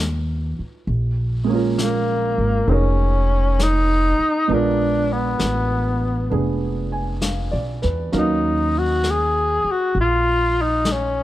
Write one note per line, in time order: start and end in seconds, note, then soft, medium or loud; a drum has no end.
0.00 0.55 D#2 medium
0.00 0.88 F#3 soft
0.00 0.89 B3 soft
0.00 0.90 D#4 soft
0.00 0.90 F4 soft
0.00 0.91 A4 soft
0.59 muted upright bass stroke soft
0.87 2.34 A#1 medium
0.87 brush sweep soft
1.44 4.46 G#3 soft
1.44 4.49 A#3 soft
1.49 2.66 C#4 soft
1.49 4.50 F4 soft
1.55 2.70 A#4 soft
1.78 snare soft
1.78 hi-hat pedal soft
1.83 2.70 A#3 medium
2.38 2.67 G#1 soft
2.68 4.15 F1 medium
2.68 2.75 C4 soft
2.68 4.49 C#4 soft
2.68 4.50 D#4 soft
2.68 4.50 G#4 soft
2.68 4.51 A#4 soft
2.68 brush sweep soft
2.73 3.64 C#4 medium
3.59 4.55 D#4 medium
3.59 snare soft
3.59 hi-hat pedal soft
4.19 muted upright bass stroke soft
4.48 5.36 A#1 medium
4.48 8.13 G#3 soft
4.48 6.29 B3 soft
4.48 6.30 D4 soft
4.48 8.15 F4 soft
4.48 brush sweep soft
4.53 5.14 D4 medium
4.53 8.12 A#4 soft
5.12 6.32 B3 medium
5.39 6.27 A1 medium
5.39 snare soft
5.39 hi-hat pedal soft
6.30 7.49 F1 medium
6.30 8.13 B3 soft
6.30 8.14 D4 soft
6.30 8.14 G#4 soft
6.30 brush sweep soft
6.92 7.39 G#5 soft
7.21 7.79 F5 soft
7.21 snare soft
7.21 hi-hat pedal soft
7.51 7.81 B1 soft
7.51 7.99 D5 soft
7.82 8.12 E2 soft
7.82 8.30 B4 soft
7.82 snare soft
8.12 9.61 D#2 medium
8.12 11.23 F#3 soft
8.12 11.23 C#4 soft
8.12 11.23 D#4 soft
8.12 11.23 A#4 soft
8.12 11.23 F5 soft
8.12 brush sweep soft
8.12 snare soft
8.18 8.80 D#4 medium
8.78 9.12 F#4 medium
9.04 snare soft
9.04 hi-hat pedal soft
9.10 9.73 G#4 medium
9.64 muted upright bass stroke soft
9.71 9.98 F#4 medium
9.94 11.23 A#1 medium
9.94 brush sweep soft
10.00 10.63 F4 medium
10.62 10.93 D#4 medium
10.85 snare soft
10.85 hi-hat pedal soft
10.91 11.23 C#4 medium